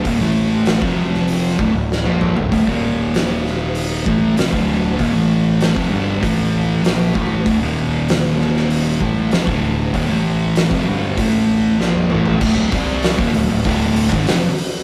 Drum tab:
CC |----------------|----------------|----------------|----------------|
HH |o---o---o-------|o---o---o---o---|o---o---o---o---|o---o---o---o---|
SD |----o--o----o---|----o-o-----o---|----o-------o---|----o-oo----o---|
T1 |-------------o--|----------------|----------------|----------------|
T2 |--------------o-|----------------|----------------|----------------|
FT |---------------o|----------------|----------------|----------------|
BD |o----o----o-----|oo--------o--o--|o----o--o-----o-|o---------o--o--|

CC |----------------|x---------------|
HH |o---o---o-------|--o-o-o-o-o-o-o-|
SD |----o-------o---|----o-------o---|
T1 |-------------o--|----------------|
T2 |--------------o-|----------------|
FT |---------------o|----------------|
BD |o----o--o-------|o-o--o--o--o----|